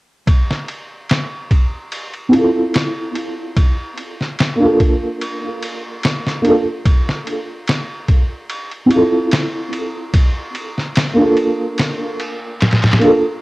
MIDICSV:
0, 0, Header, 1, 3, 480
1, 0, Start_track
1, 0, Tempo, 821918
1, 162, Time_signature, 4, 2, 24, 8
1, 7836, End_track
2, 0, Start_track
2, 0, Title_t, "Felt piano"
2, 0, Program_c, 0, 0
2, 1336, Note_on_c, 0, 60, 66
2, 1353, Note_on_c, 0, 64, 69
2, 1372, Note_on_c, 0, 65, 64
2, 1390, Note_on_c, 0, 69, 78
2, 2055, Note_off_c, 0, 60, 0
2, 2064, Note_off_c, 0, 64, 0
2, 2074, Note_off_c, 0, 65, 0
2, 2082, Note_off_c, 0, 69, 0
2, 2661, Note_on_c, 0, 58, 73
2, 2678, Note_on_c, 0, 62, 69
2, 2697, Note_on_c, 0, 65, 73
2, 2716, Note_on_c, 0, 69, 78
2, 3721, Note_off_c, 0, 58, 0
2, 3730, Note_off_c, 0, 62, 0
2, 3739, Note_off_c, 0, 65, 0
2, 3749, Note_off_c, 0, 69, 0
2, 3749, Note_on_c, 0, 58, 86
2, 3759, Note_on_c, 0, 62, 78
2, 3768, Note_on_c, 0, 65, 78
2, 3777, Note_on_c, 0, 69, 96
2, 3839, Note_off_c, 0, 58, 0
2, 3844, Note_off_c, 0, 62, 0
2, 3848, Note_off_c, 0, 65, 0
2, 3853, Note_off_c, 0, 69, 0
2, 5175, Note_on_c, 0, 60, 74
2, 5193, Note_on_c, 0, 64, 71
2, 5210, Note_on_c, 0, 65, 68
2, 5228, Note_on_c, 0, 69, 83
2, 5895, Note_off_c, 0, 60, 0
2, 5904, Note_off_c, 0, 64, 0
2, 5913, Note_off_c, 0, 65, 0
2, 5922, Note_off_c, 0, 69, 0
2, 6503, Note_on_c, 0, 58, 75
2, 6521, Note_on_c, 0, 62, 72
2, 6539, Note_on_c, 0, 65, 69
2, 6558, Note_on_c, 0, 69, 88
2, 7562, Note_off_c, 0, 58, 0
2, 7571, Note_off_c, 0, 62, 0
2, 7581, Note_off_c, 0, 65, 0
2, 7588, Note_on_c, 0, 58, 85
2, 7590, Note_off_c, 0, 69, 0
2, 7597, Note_on_c, 0, 62, 79
2, 7606, Note_on_c, 0, 65, 79
2, 7616, Note_on_c, 0, 69, 104
2, 7678, Note_off_c, 0, 58, 0
2, 7683, Note_off_c, 0, 62, 0
2, 7688, Note_off_c, 0, 65, 0
2, 7693, Note_off_c, 0, 69, 0
2, 7836, End_track
3, 0, Start_track
3, 0, Title_t, "Drums"
3, 160, Note_on_c, 9, 36, 93
3, 161, Note_on_c, 9, 51, 74
3, 218, Note_off_c, 9, 36, 0
3, 219, Note_off_c, 9, 51, 0
3, 296, Note_on_c, 9, 38, 44
3, 355, Note_off_c, 9, 38, 0
3, 400, Note_on_c, 9, 51, 59
3, 458, Note_off_c, 9, 51, 0
3, 640, Note_on_c, 9, 51, 72
3, 649, Note_on_c, 9, 38, 102
3, 698, Note_off_c, 9, 51, 0
3, 707, Note_off_c, 9, 38, 0
3, 881, Note_on_c, 9, 36, 77
3, 881, Note_on_c, 9, 51, 54
3, 939, Note_off_c, 9, 36, 0
3, 940, Note_off_c, 9, 51, 0
3, 1120, Note_on_c, 9, 51, 69
3, 1179, Note_off_c, 9, 51, 0
3, 1247, Note_on_c, 9, 51, 37
3, 1305, Note_off_c, 9, 51, 0
3, 1361, Note_on_c, 9, 51, 61
3, 1419, Note_off_c, 9, 51, 0
3, 1601, Note_on_c, 9, 51, 79
3, 1610, Note_on_c, 9, 38, 102
3, 1659, Note_off_c, 9, 51, 0
3, 1668, Note_off_c, 9, 38, 0
3, 1842, Note_on_c, 9, 51, 62
3, 1900, Note_off_c, 9, 51, 0
3, 2082, Note_on_c, 9, 36, 95
3, 2082, Note_on_c, 9, 51, 76
3, 2140, Note_off_c, 9, 36, 0
3, 2140, Note_off_c, 9, 51, 0
3, 2321, Note_on_c, 9, 51, 57
3, 2380, Note_off_c, 9, 51, 0
3, 2457, Note_on_c, 9, 38, 34
3, 2515, Note_off_c, 9, 38, 0
3, 2562, Note_on_c, 9, 51, 76
3, 2572, Note_on_c, 9, 38, 100
3, 2621, Note_off_c, 9, 51, 0
3, 2630, Note_off_c, 9, 38, 0
3, 2803, Note_on_c, 9, 36, 77
3, 2803, Note_on_c, 9, 51, 54
3, 2861, Note_off_c, 9, 36, 0
3, 2862, Note_off_c, 9, 51, 0
3, 3045, Note_on_c, 9, 51, 76
3, 3103, Note_off_c, 9, 51, 0
3, 3285, Note_on_c, 9, 51, 65
3, 3343, Note_off_c, 9, 51, 0
3, 3524, Note_on_c, 9, 51, 78
3, 3533, Note_on_c, 9, 38, 112
3, 3582, Note_off_c, 9, 51, 0
3, 3591, Note_off_c, 9, 38, 0
3, 3660, Note_on_c, 9, 38, 42
3, 3718, Note_off_c, 9, 38, 0
3, 3765, Note_on_c, 9, 51, 62
3, 3824, Note_off_c, 9, 51, 0
3, 4003, Note_on_c, 9, 36, 100
3, 4004, Note_on_c, 9, 51, 78
3, 4062, Note_off_c, 9, 36, 0
3, 4062, Note_off_c, 9, 51, 0
3, 4140, Note_on_c, 9, 38, 45
3, 4198, Note_off_c, 9, 38, 0
3, 4245, Note_on_c, 9, 51, 62
3, 4304, Note_off_c, 9, 51, 0
3, 4482, Note_on_c, 9, 51, 81
3, 4491, Note_on_c, 9, 38, 101
3, 4541, Note_off_c, 9, 51, 0
3, 4550, Note_off_c, 9, 38, 0
3, 4721, Note_on_c, 9, 36, 82
3, 4721, Note_on_c, 9, 51, 57
3, 4779, Note_off_c, 9, 51, 0
3, 4780, Note_off_c, 9, 36, 0
3, 4961, Note_on_c, 9, 51, 73
3, 5020, Note_off_c, 9, 51, 0
3, 5089, Note_on_c, 9, 51, 37
3, 5147, Note_off_c, 9, 51, 0
3, 5201, Note_on_c, 9, 51, 64
3, 5259, Note_off_c, 9, 51, 0
3, 5440, Note_on_c, 9, 51, 78
3, 5449, Note_on_c, 9, 38, 104
3, 5498, Note_off_c, 9, 51, 0
3, 5508, Note_off_c, 9, 38, 0
3, 5682, Note_on_c, 9, 51, 63
3, 5740, Note_off_c, 9, 51, 0
3, 5920, Note_on_c, 9, 36, 104
3, 5920, Note_on_c, 9, 51, 80
3, 5979, Note_off_c, 9, 36, 0
3, 5979, Note_off_c, 9, 51, 0
3, 6161, Note_on_c, 9, 51, 62
3, 6219, Note_off_c, 9, 51, 0
3, 6295, Note_on_c, 9, 38, 35
3, 6354, Note_off_c, 9, 38, 0
3, 6398, Note_on_c, 9, 51, 83
3, 6407, Note_on_c, 9, 38, 111
3, 6457, Note_off_c, 9, 51, 0
3, 6466, Note_off_c, 9, 38, 0
3, 6639, Note_on_c, 9, 51, 51
3, 6697, Note_off_c, 9, 51, 0
3, 6879, Note_on_c, 9, 51, 71
3, 6888, Note_on_c, 9, 38, 96
3, 6937, Note_off_c, 9, 51, 0
3, 6946, Note_off_c, 9, 38, 0
3, 7122, Note_on_c, 9, 51, 65
3, 7181, Note_off_c, 9, 51, 0
3, 7361, Note_on_c, 9, 51, 64
3, 7371, Note_on_c, 9, 38, 86
3, 7420, Note_off_c, 9, 51, 0
3, 7423, Note_on_c, 9, 51, 65
3, 7429, Note_off_c, 9, 38, 0
3, 7432, Note_on_c, 9, 38, 83
3, 7481, Note_off_c, 9, 51, 0
3, 7487, Note_on_c, 9, 51, 65
3, 7491, Note_off_c, 9, 38, 0
3, 7497, Note_on_c, 9, 38, 83
3, 7542, Note_off_c, 9, 51, 0
3, 7542, Note_on_c, 9, 51, 63
3, 7551, Note_off_c, 9, 38, 0
3, 7551, Note_on_c, 9, 38, 87
3, 7600, Note_off_c, 9, 51, 0
3, 7600, Note_on_c, 9, 51, 62
3, 7610, Note_off_c, 9, 38, 0
3, 7659, Note_off_c, 9, 51, 0
3, 7836, End_track
0, 0, End_of_file